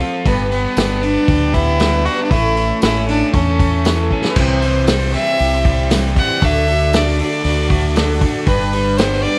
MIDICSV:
0, 0, Header, 1, 7, 480
1, 0, Start_track
1, 0, Tempo, 513699
1, 241, Time_signature, 4, 2, 24, 8
1, 8773, End_track
2, 0, Start_track
2, 0, Title_t, "Fiddle"
2, 0, Program_c, 0, 110
2, 240, Note_on_c, 0, 59, 89
2, 464, Note_off_c, 0, 59, 0
2, 479, Note_on_c, 0, 59, 91
2, 945, Note_on_c, 0, 62, 105
2, 959, Note_off_c, 0, 59, 0
2, 1437, Note_on_c, 0, 64, 108
2, 1451, Note_off_c, 0, 62, 0
2, 1917, Note_on_c, 0, 66, 95
2, 1931, Note_off_c, 0, 64, 0
2, 2082, Note_off_c, 0, 66, 0
2, 2088, Note_on_c, 0, 62, 77
2, 2144, Note_on_c, 0, 64, 102
2, 2158, Note_off_c, 0, 62, 0
2, 2629, Note_off_c, 0, 64, 0
2, 2634, Note_on_c, 0, 64, 91
2, 2861, Note_off_c, 0, 64, 0
2, 2880, Note_on_c, 0, 62, 95
2, 3104, Note_off_c, 0, 62, 0
2, 3116, Note_on_c, 0, 61, 85
2, 3802, Note_off_c, 0, 61, 0
2, 4011, Note_on_c, 0, 71, 64
2, 4085, Note_on_c, 0, 72, 83
2, 4099, Note_off_c, 0, 71, 0
2, 4794, Note_off_c, 0, 72, 0
2, 4800, Note_on_c, 0, 76, 117
2, 5483, Note_off_c, 0, 76, 0
2, 5776, Note_on_c, 0, 78, 98
2, 6021, Note_on_c, 0, 76, 109
2, 6035, Note_off_c, 0, 78, 0
2, 6507, Note_on_c, 0, 74, 89
2, 6521, Note_off_c, 0, 76, 0
2, 6733, Note_off_c, 0, 74, 0
2, 6747, Note_on_c, 0, 74, 80
2, 7416, Note_off_c, 0, 74, 0
2, 7908, Note_on_c, 0, 71, 94
2, 8386, Note_on_c, 0, 72, 90
2, 8400, Note_off_c, 0, 71, 0
2, 8613, Note_on_c, 0, 74, 107
2, 8627, Note_off_c, 0, 72, 0
2, 8773, Note_off_c, 0, 74, 0
2, 8773, End_track
3, 0, Start_track
3, 0, Title_t, "Tonewheel organ"
3, 0, Program_c, 1, 16
3, 0, Note_on_c, 1, 60, 61
3, 0, Note_on_c, 1, 65, 67
3, 0, Note_on_c, 1, 69, 65
3, 0, Note_on_c, 1, 72, 64
3, 216, Note_off_c, 1, 60, 0
3, 216, Note_off_c, 1, 69, 0
3, 217, Note_off_c, 1, 65, 0
3, 218, Note_off_c, 1, 72, 0
3, 237, Note_on_c, 1, 71, 72
3, 240, Note_on_c, 1, 67, 67
3, 245, Note_on_c, 1, 62, 68
3, 246, Note_on_c, 1, 59, 68
3, 2141, Note_off_c, 1, 71, 0
3, 2142, Note_off_c, 1, 67, 0
3, 2145, Note_off_c, 1, 59, 0
3, 2145, Note_off_c, 1, 62, 0
3, 2164, Note_on_c, 1, 61, 71
3, 2164, Note_on_c, 1, 64, 66
3, 2169, Note_on_c, 1, 69, 68
3, 2170, Note_on_c, 1, 57, 68
3, 4064, Note_off_c, 1, 61, 0
3, 4064, Note_off_c, 1, 64, 0
3, 4066, Note_off_c, 1, 69, 0
3, 4067, Note_off_c, 1, 57, 0
3, 4085, Note_on_c, 1, 67, 66
3, 4086, Note_on_c, 1, 72, 66
3, 4088, Note_on_c, 1, 60, 73
3, 4088, Note_on_c, 1, 64, 66
3, 5983, Note_off_c, 1, 67, 0
3, 5984, Note_off_c, 1, 72, 0
3, 5985, Note_off_c, 1, 60, 0
3, 5985, Note_off_c, 1, 64, 0
3, 6008, Note_on_c, 1, 66, 66
3, 6008, Note_on_c, 1, 74, 72
3, 6011, Note_on_c, 1, 62, 72
3, 6012, Note_on_c, 1, 69, 72
3, 7905, Note_off_c, 1, 66, 0
3, 7905, Note_off_c, 1, 74, 0
3, 7906, Note_off_c, 1, 62, 0
3, 7907, Note_off_c, 1, 69, 0
3, 7919, Note_on_c, 1, 67, 73
3, 7923, Note_on_c, 1, 62, 66
3, 7925, Note_on_c, 1, 71, 68
3, 7926, Note_on_c, 1, 74, 66
3, 8773, Note_off_c, 1, 62, 0
3, 8773, Note_off_c, 1, 67, 0
3, 8773, Note_off_c, 1, 71, 0
3, 8773, Note_off_c, 1, 74, 0
3, 8773, End_track
4, 0, Start_track
4, 0, Title_t, "Twelve-string acoustic guitar"
4, 0, Program_c, 2, 25
4, 2, Note_on_c, 2, 69, 62
4, 15, Note_on_c, 2, 65, 58
4, 20, Note_on_c, 2, 60, 50
4, 237, Note_on_c, 2, 55, 68
4, 241, Note_off_c, 2, 69, 0
4, 244, Note_off_c, 2, 60, 0
4, 248, Note_off_c, 2, 65, 0
4, 248, Note_on_c, 2, 62, 80
4, 251, Note_on_c, 2, 71, 79
4, 253, Note_on_c, 2, 67, 78
4, 717, Note_off_c, 2, 55, 0
4, 721, Note_off_c, 2, 62, 0
4, 726, Note_off_c, 2, 71, 0
4, 728, Note_off_c, 2, 67, 0
4, 728, Note_on_c, 2, 55, 55
4, 733, Note_on_c, 2, 62, 61
4, 738, Note_on_c, 2, 67, 61
4, 741, Note_on_c, 2, 71, 63
4, 946, Note_off_c, 2, 71, 0
4, 957, Note_on_c, 2, 71, 57
4, 962, Note_off_c, 2, 67, 0
4, 965, Note_off_c, 2, 55, 0
4, 967, Note_off_c, 2, 62, 0
4, 973, Note_on_c, 2, 67, 54
4, 977, Note_on_c, 2, 62, 53
4, 1675, Note_off_c, 2, 62, 0
4, 1679, Note_on_c, 2, 55, 59
4, 1680, Note_off_c, 2, 71, 0
4, 1681, Note_off_c, 2, 67, 0
4, 1686, Note_on_c, 2, 62, 71
4, 1692, Note_on_c, 2, 67, 64
4, 1699, Note_on_c, 2, 71, 66
4, 1908, Note_off_c, 2, 71, 0
4, 1916, Note_off_c, 2, 67, 0
4, 1919, Note_on_c, 2, 71, 58
4, 1920, Note_off_c, 2, 55, 0
4, 1920, Note_off_c, 2, 62, 0
4, 1927, Note_on_c, 2, 67, 51
4, 1931, Note_on_c, 2, 62, 46
4, 2161, Note_off_c, 2, 71, 0
4, 2164, Note_off_c, 2, 67, 0
4, 2165, Note_on_c, 2, 45, 73
4, 2167, Note_off_c, 2, 62, 0
4, 2169, Note_on_c, 2, 52, 70
4, 2169, Note_on_c, 2, 57, 82
4, 2177, Note_on_c, 2, 64, 88
4, 2179, Note_on_c, 2, 61, 77
4, 2182, Note_on_c, 2, 69, 85
4, 2631, Note_off_c, 2, 57, 0
4, 2633, Note_off_c, 2, 61, 0
4, 2640, Note_off_c, 2, 64, 0
4, 2642, Note_on_c, 2, 57, 65
4, 2644, Note_off_c, 2, 45, 0
4, 2644, Note_on_c, 2, 61, 63
4, 2645, Note_off_c, 2, 69, 0
4, 2646, Note_off_c, 2, 52, 0
4, 2652, Note_on_c, 2, 64, 65
4, 2657, Note_on_c, 2, 69, 58
4, 2870, Note_off_c, 2, 69, 0
4, 2871, Note_off_c, 2, 64, 0
4, 2881, Note_on_c, 2, 69, 59
4, 2882, Note_off_c, 2, 57, 0
4, 2882, Note_on_c, 2, 64, 58
4, 2883, Note_off_c, 2, 61, 0
4, 2894, Note_on_c, 2, 61, 58
4, 2896, Note_on_c, 2, 57, 49
4, 3587, Note_off_c, 2, 57, 0
4, 3593, Note_off_c, 2, 61, 0
4, 3598, Note_on_c, 2, 57, 60
4, 3601, Note_off_c, 2, 69, 0
4, 3602, Note_off_c, 2, 64, 0
4, 3604, Note_on_c, 2, 61, 65
4, 3614, Note_on_c, 2, 64, 65
4, 3620, Note_on_c, 2, 69, 65
4, 3832, Note_off_c, 2, 69, 0
4, 3840, Note_off_c, 2, 57, 0
4, 3843, Note_off_c, 2, 61, 0
4, 3843, Note_on_c, 2, 69, 60
4, 3844, Note_off_c, 2, 64, 0
4, 3855, Note_on_c, 2, 64, 56
4, 3860, Note_on_c, 2, 61, 57
4, 3866, Note_on_c, 2, 57, 52
4, 4083, Note_off_c, 2, 69, 0
4, 4088, Note_off_c, 2, 64, 0
4, 4091, Note_off_c, 2, 61, 0
4, 4094, Note_off_c, 2, 57, 0
4, 4096, Note_on_c, 2, 48, 83
4, 4098, Note_on_c, 2, 55, 79
4, 4099, Note_on_c, 2, 52, 74
4, 4100, Note_on_c, 2, 60, 79
4, 4102, Note_on_c, 2, 72, 86
4, 4103, Note_on_c, 2, 64, 80
4, 4316, Note_off_c, 2, 72, 0
4, 4327, Note_off_c, 2, 64, 0
4, 4327, Note_on_c, 2, 72, 58
4, 4329, Note_off_c, 2, 48, 0
4, 4330, Note_off_c, 2, 52, 0
4, 4330, Note_off_c, 2, 55, 0
4, 4331, Note_off_c, 2, 60, 0
4, 4339, Note_on_c, 2, 64, 49
4, 4344, Note_on_c, 2, 60, 50
4, 4350, Note_on_c, 2, 55, 42
4, 4548, Note_off_c, 2, 55, 0
4, 4554, Note_off_c, 2, 60, 0
4, 4559, Note_off_c, 2, 64, 0
4, 4559, Note_on_c, 2, 55, 54
4, 4564, Note_off_c, 2, 72, 0
4, 4565, Note_on_c, 2, 60, 62
4, 4570, Note_on_c, 2, 64, 58
4, 4578, Note_on_c, 2, 72, 59
4, 4786, Note_off_c, 2, 72, 0
4, 4797, Note_off_c, 2, 64, 0
4, 4798, Note_on_c, 2, 72, 63
4, 4800, Note_off_c, 2, 55, 0
4, 4803, Note_off_c, 2, 60, 0
4, 4808, Note_on_c, 2, 64, 61
4, 4815, Note_on_c, 2, 60, 56
4, 4821, Note_on_c, 2, 55, 52
4, 5508, Note_off_c, 2, 55, 0
4, 5513, Note_off_c, 2, 60, 0
4, 5518, Note_off_c, 2, 64, 0
4, 5519, Note_off_c, 2, 72, 0
4, 5519, Note_on_c, 2, 55, 74
4, 5524, Note_on_c, 2, 60, 80
4, 5529, Note_on_c, 2, 64, 70
4, 5536, Note_on_c, 2, 72, 80
4, 5738, Note_off_c, 2, 72, 0
4, 5745, Note_off_c, 2, 64, 0
4, 5750, Note_on_c, 2, 72, 57
4, 5751, Note_off_c, 2, 60, 0
4, 5756, Note_on_c, 2, 64, 55
4, 5757, Note_off_c, 2, 55, 0
4, 5762, Note_on_c, 2, 60, 50
4, 5768, Note_on_c, 2, 55, 44
4, 5995, Note_off_c, 2, 72, 0
4, 5996, Note_on_c, 2, 50, 78
4, 5997, Note_off_c, 2, 60, 0
4, 5998, Note_off_c, 2, 55, 0
4, 5998, Note_off_c, 2, 64, 0
4, 6000, Note_on_c, 2, 62, 77
4, 6002, Note_on_c, 2, 57, 75
4, 6007, Note_on_c, 2, 69, 81
4, 6008, Note_on_c, 2, 66, 85
4, 6226, Note_off_c, 2, 69, 0
4, 6234, Note_off_c, 2, 66, 0
4, 6237, Note_on_c, 2, 69, 54
4, 6238, Note_off_c, 2, 50, 0
4, 6240, Note_off_c, 2, 62, 0
4, 6241, Note_off_c, 2, 57, 0
4, 6246, Note_on_c, 2, 66, 51
4, 6257, Note_on_c, 2, 62, 45
4, 6477, Note_off_c, 2, 62, 0
4, 6479, Note_off_c, 2, 69, 0
4, 6482, Note_on_c, 2, 57, 58
4, 6483, Note_off_c, 2, 66, 0
4, 6489, Note_on_c, 2, 62, 65
4, 6495, Note_on_c, 2, 66, 58
4, 6501, Note_on_c, 2, 69, 64
4, 6714, Note_off_c, 2, 69, 0
4, 6721, Note_off_c, 2, 57, 0
4, 6725, Note_off_c, 2, 62, 0
4, 6725, Note_on_c, 2, 69, 63
4, 6728, Note_off_c, 2, 66, 0
4, 6741, Note_on_c, 2, 66, 56
4, 6745, Note_on_c, 2, 62, 45
4, 7429, Note_on_c, 2, 57, 71
4, 7435, Note_off_c, 2, 62, 0
4, 7435, Note_off_c, 2, 66, 0
4, 7438, Note_on_c, 2, 62, 71
4, 7439, Note_off_c, 2, 69, 0
4, 7446, Note_on_c, 2, 66, 70
4, 7450, Note_on_c, 2, 69, 76
4, 7658, Note_off_c, 2, 69, 0
4, 7669, Note_on_c, 2, 69, 59
4, 7672, Note_off_c, 2, 66, 0
4, 7675, Note_off_c, 2, 57, 0
4, 7679, Note_off_c, 2, 62, 0
4, 7683, Note_on_c, 2, 66, 60
4, 7690, Note_on_c, 2, 62, 50
4, 7913, Note_off_c, 2, 62, 0
4, 7915, Note_off_c, 2, 69, 0
4, 7916, Note_on_c, 2, 55, 74
4, 7922, Note_off_c, 2, 66, 0
4, 7924, Note_on_c, 2, 62, 80
4, 7929, Note_on_c, 2, 67, 73
4, 7934, Note_on_c, 2, 71, 86
4, 8150, Note_off_c, 2, 71, 0
4, 8158, Note_off_c, 2, 55, 0
4, 8158, Note_off_c, 2, 67, 0
4, 8161, Note_on_c, 2, 71, 57
4, 8162, Note_off_c, 2, 62, 0
4, 8170, Note_on_c, 2, 67, 43
4, 8181, Note_on_c, 2, 62, 44
4, 8394, Note_off_c, 2, 62, 0
4, 8401, Note_off_c, 2, 71, 0
4, 8401, Note_on_c, 2, 55, 64
4, 8405, Note_off_c, 2, 67, 0
4, 8406, Note_on_c, 2, 62, 62
4, 8416, Note_on_c, 2, 67, 69
4, 8420, Note_on_c, 2, 71, 64
4, 8617, Note_off_c, 2, 71, 0
4, 8625, Note_off_c, 2, 67, 0
4, 8629, Note_on_c, 2, 71, 64
4, 8636, Note_off_c, 2, 62, 0
4, 8637, Note_on_c, 2, 67, 61
4, 8640, Note_off_c, 2, 55, 0
4, 8647, Note_on_c, 2, 62, 49
4, 8773, Note_off_c, 2, 62, 0
4, 8773, Note_off_c, 2, 67, 0
4, 8773, Note_off_c, 2, 71, 0
4, 8773, End_track
5, 0, Start_track
5, 0, Title_t, "Overdriven electric guitar"
5, 0, Program_c, 3, 29
5, 0, Note_on_c, 3, 53, 75
5, 0, Note_on_c, 3, 60, 65
5, 0, Note_on_c, 3, 69, 82
5, 5, Note_on_c, 3, 65, 67
5, 238, Note_off_c, 3, 53, 0
5, 241, Note_off_c, 3, 69, 0
5, 241, Note_on_c, 3, 43, 78
5, 242, Note_off_c, 3, 60, 0
5, 243, Note_off_c, 3, 65, 0
5, 476, Note_on_c, 3, 59, 73
5, 720, Note_on_c, 3, 62, 68
5, 950, Note_off_c, 3, 59, 0
5, 962, Note_on_c, 3, 59, 70
5, 1205, Note_on_c, 3, 67, 77
5, 1437, Note_off_c, 3, 59, 0
5, 1442, Note_off_c, 3, 43, 0
5, 1448, Note_on_c, 3, 59, 68
5, 1685, Note_on_c, 3, 55, 73
5, 1913, Note_off_c, 3, 62, 0
5, 1924, Note_on_c, 3, 62, 68
5, 2159, Note_on_c, 3, 45, 75
5, 2163, Note_off_c, 3, 62, 0
5, 2164, Note_off_c, 3, 55, 0
5, 2164, Note_off_c, 3, 67, 0
5, 2165, Note_off_c, 3, 59, 0
5, 2403, Note_on_c, 3, 57, 68
5, 2650, Note_on_c, 3, 61, 67
5, 2872, Note_off_c, 3, 57, 0
5, 2883, Note_on_c, 3, 57, 69
5, 3125, Note_on_c, 3, 69, 84
5, 3358, Note_off_c, 3, 57, 0
5, 3361, Note_off_c, 3, 45, 0
5, 3369, Note_on_c, 3, 57, 63
5, 3600, Note_on_c, 3, 52, 75
5, 3837, Note_off_c, 3, 61, 0
5, 3849, Note_on_c, 3, 61, 66
5, 4081, Note_off_c, 3, 52, 0
5, 4083, Note_off_c, 3, 69, 0
5, 4083, Note_on_c, 3, 48, 71
5, 4085, Note_off_c, 3, 57, 0
5, 4085, Note_off_c, 3, 61, 0
5, 4318, Note_on_c, 3, 52, 76
5, 4559, Note_on_c, 3, 55, 62
5, 4800, Note_on_c, 3, 60, 70
5, 5041, Note_on_c, 3, 67, 82
5, 5262, Note_off_c, 3, 55, 0
5, 5273, Note_on_c, 3, 55, 69
5, 5282, Note_off_c, 3, 48, 0
5, 5505, Note_off_c, 3, 52, 0
5, 5516, Note_on_c, 3, 52, 77
5, 5745, Note_off_c, 3, 55, 0
5, 5757, Note_on_c, 3, 55, 69
5, 5998, Note_off_c, 3, 52, 0
5, 5999, Note_off_c, 3, 55, 0
5, 6000, Note_off_c, 3, 60, 0
5, 6001, Note_off_c, 3, 67, 0
5, 6004, Note_on_c, 3, 50, 82
5, 6226, Note_off_c, 3, 50, 0
5, 6237, Note_on_c, 3, 50, 69
5, 6476, Note_on_c, 3, 57, 68
5, 6716, Note_on_c, 3, 62, 70
5, 6951, Note_on_c, 3, 66, 86
5, 7183, Note_off_c, 3, 57, 0
5, 7194, Note_on_c, 3, 57, 69
5, 7426, Note_off_c, 3, 50, 0
5, 7438, Note_on_c, 3, 50, 73
5, 7670, Note_off_c, 3, 57, 0
5, 7681, Note_on_c, 3, 57, 64
5, 7916, Note_off_c, 3, 66, 0
5, 7918, Note_on_c, 3, 43, 83
5, 7919, Note_off_c, 3, 50, 0
5, 7921, Note_off_c, 3, 57, 0
5, 8158, Note_on_c, 3, 55, 71
5, 8399, Note_on_c, 3, 59, 66
5, 8627, Note_off_c, 3, 62, 0
5, 8630, Note_on_c, 3, 62, 72
5, 8773, Note_off_c, 3, 43, 0
5, 8773, Note_off_c, 3, 55, 0
5, 8773, Note_off_c, 3, 59, 0
5, 8773, Note_off_c, 3, 62, 0
5, 8773, End_track
6, 0, Start_track
6, 0, Title_t, "Fingered electric bass"
6, 0, Program_c, 4, 33
6, 240, Note_on_c, 4, 31, 114
6, 605, Note_off_c, 4, 31, 0
6, 716, Note_on_c, 4, 31, 93
6, 1083, Note_off_c, 4, 31, 0
6, 1201, Note_on_c, 4, 38, 99
6, 1930, Note_off_c, 4, 38, 0
6, 2159, Note_on_c, 4, 33, 116
6, 2524, Note_off_c, 4, 33, 0
6, 2641, Note_on_c, 4, 33, 86
6, 3005, Note_off_c, 4, 33, 0
6, 3118, Note_on_c, 4, 40, 102
6, 3848, Note_off_c, 4, 40, 0
6, 4076, Note_on_c, 4, 36, 113
6, 4806, Note_off_c, 4, 36, 0
6, 5046, Note_on_c, 4, 36, 104
6, 5773, Note_off_c, 4, 36, 0
6, 6001, Note_on_c, 4, 38, 116
6, 6729, Note_off_c, 4, 38, 0
6, 6956, Note_on_c, 4, 38, 108
6, 7686, Note_off_c, 4, 38, 0
6, 7913, Note_on_c, 4, 31, 118
6, 8644, Note_off_c, 4, 31, 0
6, 8773, End_track
7, 0, Start_track
7, 0, Title_t, "Drums"
7, 2, Note_on_c, 9, 46, 51
7, 96, Note_off_c, 9, 46, 0
7, 239, Note_on_c, 9, 36, 108
7, 240, Note_on_c, 9, 46, 80
7, 332, Note_off_c, 9, 36, 0
7, 333, Note_off_c, 9, 46, 0
7, 482, Note_on_c, 9, 46, 54
7, 576, Note_off_c, 9, 46, 0
7, 716, Note_on_c, 9, 54, 92
7, 719, Note_on_c, 9, 46, 82
7, 729, Note_on_c, 9, 38, 122
7, 810, Note_off_c, 9, 54, 0
7, 813, Note_off_c, 9, 46, 0
7, 822, Note_off_c, 9, 38, 0
7, 961, Note_on_c, 9, 46, 56
7, 1054, Note_off_c, 9, 46, 0
7, 1198, Note_on_c, 9, 36, 112
7, 1198, Note_on_c, 9, 46, 74
7, 1291, Note_off_c, 9, 36, 0
7, 1291, Note_off_c, 9, 46, 0
7, 1439, Note_on_c, 9, 36, 80
7, 1439, Note_on_c, 9, 46, 62
7, 1532, Note_off_c, 9, 36, 0
7, 1532, Note_off_c, 9, 46, 0
7, 1678, Note_on_c, 9, 46, 76
7, 1679, Note_on_c, 9, 54, 83
7, 1688, Note_on_c, 9, 38, 104
7, 1772, Note_off_c, 9, 46, 0
7, 1773, Note_off_c, 9, 54, 0
7, 1781, Note_off_c, 9, 38, 0
7, 1920, Note_on_c, 9, 46, 50
7, 2013, Note_off_c, 9, 46, 0
7, 2157, Note_on_c, 9, 36, 108
7, 2157, Note_on_c, 9, 46, 75
7, 2250, Note_off_c, 9, 36, 0
7, 2251, Note_off_c, 9, 46, 0
7, 2399, Note_on_c, 9, 46, 59
7, 2493, Note_off_c, 9, 46, 0
7, 2634, Note_on_c, 9, 54, 97
7, 2635, Note_on_c, 9, 46, 81
7, 2644, Note_on_c, 9, 38, 120
7, 2727, Note_off_c, 9, 54, 0
7, 2728, Note_off_c, 9, 46, 0
7, 2737, Note_off_c, 9, 38, 0
7, 2883, Note_on_c, 9, 46, 63
7, 2976, Note_off_c, 9, 46, 0
7, 3116, Note_on_c, 9, 46, 80
7, 3117, Note_on_c, 9, 36, 110
7, 3209, Note_off_c, 9, 46, 0
7, 3211, Note_off_c, 9, 36, 0
7, 3359, Note_on_c, 9, 36, 89
7, 3362, Note_on_c, 9, 46, 69
7, 3452, Note_off_c, 9, 36, 0
7, 3456, Note_off_c, 9, 46, 0
7, 3597, Note_on_c, 9, 54, 101
7, 3598, Note_on_c, 9, 46, 77
7, 3608, Note_on_c, 9, 38, 108
7, 3691, Note_off_c, 9, 54, 0
7, 3692, Note_off_c, 9, 46, 0
7, 3701, Note_off_c, 9, 38, 0
7, 3838, Note_on_c, 9, 36, 55
7, 3931, Note_off_c, 9, 36, 0
7, 3964, Note_on_c, 9, 38, 89
7, 4058, Note_off_c, 9, 38, 0
7, 4073, Note_on_c, 9, 49, 122
7, 4077, Note_on_c, 9, 36, 120
7, 4166, Note_off_c, 9, 49, 0
7, 4170, Note_off_c, 9, 36, 0
7, 4317, Note_on_c, 9, 46, 61
7, 4410, Note_off_c, 9, 46, 0
7, 4550, Note_on_c, 9, 46, 84
7, 4555, Note_on_c, 9, 54, 90
7, 4559, Note_on_c, 9, 38, 127
7, 4643, Note_off_c, 9, 46, 0
7, 4649, Note_off_c, 9, 54, 0
7, 4653, Note_off_c, 9, 38, 0
7, 4798, Note_on_c, 9, 46, 61
7, 4807, Note_on_c, 9, 38, 33
7, 4891, Note_off_c, 9, 46, 0
7, 4901, Note_off_c, 9, 38, 0
7, 5037, Note_on_c, 9, 46, 75
7, 5131, Note_off_c, 9, 46, 0
7, 5277, Note_on_c, 9, 46, 59
7, 5279, Note_on_c, 9, 36, 90
7, 5370, Note_off_c, 9, 46, 0
7, 5372, Note_off_c, 9, 36, 0
7, 5514, Note_on_c, 9, 46, 80
7, 5523, Note_on_c, 9, 38, 111
7, 5524, Note_on_c, 9, 54, 94
7, 5607, Note_off_c, 9, 46, 0
7, 5616, Note_off_c, 9, 38, 0
7, 5617, Note_off_c, 9, 54, 0
7, 5759, Note_on_c, 9, 36, 86
7, 5759, Note_on_c, 9, 46, 60
7, 5852, Note_off_c, 9, 36, 0
7, 5852, Note_off_c, 9, 46, 0
7, 5997, Note_on_c, 9, 46, 83
7, 5999, Note_on_c, 9, 36, 119
7, 6091, Note_off_c, 9, 46, 0
7, 6093, Note_off_c, 9, 36, 0
7, 6242, Note_on_c, 9, 46, 64
7, 6335, Note_off_c, 9, 46, 0
7, 6477, Note_on_c, 9, 46, 90
7, 6478, Note_on_c, 9, 54, 91
7, 6486, Note_on_c, 9, 38, 121
7, 6570, Note_off_c, 9, 46, 0
7, 6571, Note_off_c, 9, 54, 0
7, 6579, Note_off_c, 9, 38, 0
7, 6610, Note_on_c, 9, 38, 29
7, 6704, Note_off_c, 9, 38, 0
7, 6716, Note_on_c, 9, 46, 66
7, 6809, Note_off_c, 9, 46, 0
7, 6954, Note_on_c, 9, 46, 85
7, 7047, Note_off_c, 9, 46, 0
7, 7196, Note_on_c, 9, 36, 96
7, 7196, Note_on_c, 9, 46, 71
7, 7289, Note_off_c, 9, 36, 0
7, 7289, Note_off_c, 9, 46, 0
7, 7437, Note_on_c, 9, 46, 86
7, 7439, Note_on_c, 9, 54, 87
7, 7447, Note_on_c, 9, 38, 104
7, 7531, Note_off_c, 9, 46, 0
7, 7532, Note_off_c, 9, 54, 0
7, 7540, Note_off_c, 9, 38, 0
7, 7673, Note_on_c, 9, 46, 64
7, 7674, Note_on_c, 9, 36, 87
7, 7767, Note_off_c, 9, 46, 0
7, 7768, Note_off_c, 9, 36, 0
7, 7908, Note_on_c, 9, 46, 78
7, 7913, Note_on_c, 9, 36, 106
7, 8001, Note_off_c, 9, 46, 0
7, 8006, Note_off_c, 9, 36, 0
7, 8157, Note_on_c, 9, 46, 67
7, 8250, Note_off_c, 9, 46, 0
7, 8395, Note_on_c, 9, 46, 86
7, 8395, Note_on_c, 9, 54, 85
7, 8404, Note_on_c, 9, 38, 122
7, 8488, Note_off_c, 9, 46, 0
7, 8488, Note_off_c, 9, 54, 0
7, 8498, Note_off_c, 9, 38, 0
7, 8528, Note_on_c, 9, 38, 32
7, 8621, Note_off_c, 9, 38, 0
7, 8634, Note_on_c, 9, 46, 64
7, 8728, Note_off_c, 9, 46, 0
7, 8773, End_track
0, 0, End_of_file